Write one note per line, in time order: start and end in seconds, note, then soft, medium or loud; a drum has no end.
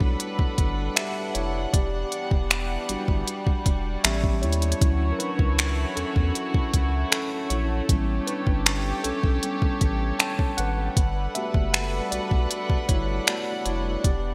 0.00 0.16 B1 medium
0.00 1.71 G3 medium
0.00 1.75 A3 medium
0.00 1.76 B3 medium
0.00 0.93 D4 medium
0.00 4.01 D4 medium
0.00 1.37 E4 medium
0.00 1.75 F#4 medium
0.00 1.71 A4 medium
0.00 1.00 B4 medium
0.00 1.71 B4 medium
0.00 1.34 C#5 medium
0.00 1.73 D5 medium
0.00 4.01 F#5 medium
0.00 kick medium
0.20 closed hi-hat medium
0.39 0.47 G1 soft
0.39 kick medium
0.58 0.89 G1 medium
0.58 kick medium
0.58 closed hi-hat medium
0.96 1.33 G4 medium
0.96 1.32 E5 medium
0.96 finger snap loud
0.96 closed hi-hat medium
1.34 1.66 F1 medium
1.34 1.72 E4 medium
1.34 1.74 C#5 medium
1.34 closed hi-hat medium
1.73 2.04 E1 loud
1.73 4.02 E3 medium
1.73 4.78 G3 medium
1.73 4.02 B3 medium
1.73 4.01 G4 medium
1.73 4.00 D5 medium
1.73 kick loud
1.73 closed hi-hat medium
2.12 closed hi-hat medium
2.31 2.78 E1 loud
2.31 kick medium
2.51 finger snap loud
2.51 closed hi-hat medium
2.89 2.97 G1 medium
2.89 4.00 G3 medium
2.89 4.01 D4 medium
2.89 4.01 F#4 medium
2.89 closed hi-hat medium
3.08 3.24 G1 medium
3.08 kick medium
3.27 closed hi-hat medium
3.47 3.54 E1 soft
3.47 kick medium
3.66 3.97 E1 loud
3.66 kick medium
3.66 closed hi-hat medium
4.04 4.45 A1 loud
4.04 4.78 G3 medium
4.04 10.93 A3 medium
4.04 4.78 B3 soft
4.04 4.78 C#4 medium
4.04 4.41 G4 medium
4.04 7.85 C#5 medium
4.04 4.44 E5 medium
4.04 finger snap loud
4.04 closed hi-hat medium
4.24 kick medium
4.42 4.74 D#2 medium
4.42 4.81 E4 medium
4.42 5.08 C#5 loud
4.42 closed hi-hat soft
4.52 closed hi-hat medium
4.62 closed hi-hat medium
4.72 closed hi-hat medium
4.81 5.12 D2 loud
4.81 7.86 E3 medium
4.81 5.33 F#3 medium
4.81 5.33 C#4 soft
4.81 7.86 E4 medium
4.81 5.33 E4 medium
4.81 7.86 F#4 medium
4.81 kick loud
4.81 closed hi-hat medium
5.12 5.19 A#4 medium
5.19 5.93 D4 medium
5.19 5.99 B4 medium
5.19 closed hi-hat medium
5.39 5.85 C#2 medium
5.39 kick medium
5.59 finger snap loud
5.59 closed hi-hat medium
5.96 6.05 E2 soft
5.96 7.09 C#4 medium
5.96 7.10 A4 medium
5.96 closed hi-hat medium
6.16 6.31 E2 medium
6.16 kick medium
6.35 closed hi-hat medium
6.54 6.62 C#2 soft
6.54 kick medium
6.74 7.05 C#2 medium
6.74 kick medium
6.74 closed hi-hat medium
7.11 7.31 C#4 medium
7.11 7.29 A4 medium
7.11 finger snap loud
7.11 closed hi-hat medium
7.50 7.81 A#1 medium
7.50 8.24 E4 medium
7.50 8.29 C#5 medium
7.50 closed hi-hat medium
7.89 8.20 A1 loud
7.89 8.40 G3 medium
7.89 8.41 B3 soft
7.89 8.41 C#4 medium
7.89 10.94 G4 medium
7.89 10.94 C#5 medium
7.89 kick loud
7.89 closed hi-hat medium
8.27 9.01 D4 medium
8.27 9.06 B4 medium
8.27 closed hi-hat medium
8.47 8.93 G1 loud
8.47 kick medium
8.66 finger snap loud
8.66 closed hi-hat medium
9.03 9.12 B1 medium
9.03 9.43 C#4 medium
9.03 10.23 A4 loud
9.03 closed hi-hat medium
9.23 9.39 B1 medium
9.23 kick medium
9.43 9.78 G3 soft
9.43 9.78 B3 soft
9.43 9.78 C#4 medium
9.43 closed hi-hat medium
9.62 9.70 A1 soft
9.62 kick medium
9.81 10.12 A1 medium
9.81 kick medium
9.81 closed hi-hat medium
10.19 10.56 C#5 medium
10.19 10.59 A5 loud
10.19 finger snap loud
10.19 closed hi-hat medium
10.39 kick medium
10.57 10.89 G#1 medium
10.57 11.32 B4 medium
10.57 11.37 F#5 loud
10.57 closed hi-hat medium
10.97 11.28 G1 loud
10.97 14.01 G3 medium
10.97 14.34 D4 medium
10.97 14.01 A4 medium
10.97 14.01 B4 medium
10.97 14.34 F#5 medium
10.97 kick loud
10.97 closed hi-hat medium
11.35 11.87 A3 medium
11.35 11.87 B3 soft
11.35 11.87 F#4 medium
11.35 11.72 G4 medium
11.35 11.75 E5 medium
11.35 closed hi-hat medium
11.54 12.01 F#1 loud
11.54 kick medium
11.73 12.10 B4 medium
11.73 12.13 F#5 loud
11.73 finger snap loud
11.73 closed hi-hat medium
12.11 12.20 B1 soft
12.11 12.86 F#4 medium
12.11 12.91 D5 loud
12.11 closed hi-hat medium
12.31 12.47 B1 medium
12.31 kick medium
12.51 closed hi-hat medium
12.70 12.77 G1 soft
12.70 kick medium
12.88 13.20 G1 medium
12.88 13.26 E4 medium
12.88 13.28 C#5 medium
12.88 kick medium
12.88 closed hi-hat medium
13.27 13.62 A3 soft
13.27 13.63 B3 soft
13.27 13.64 F#4 medium
13.27 13.67 D5 medium
13.27 finger snap loud
13.27 closed hi-hat medium
13.65 13.97 F1 medium
13.65 14.03 E4 medium
13.65 14.05 C#5 medium
13.65 closed hi-hat medium
14.04 14.34 E1 loud
14.04 14.34 E3 medium
14.04 14.34 G3 medium
14.04 14.34 B3 medium
14.04 14.34 G4 medium
14.04 14.34 D5 medium
14.04 kick loud
14.04 closed hi-hat medium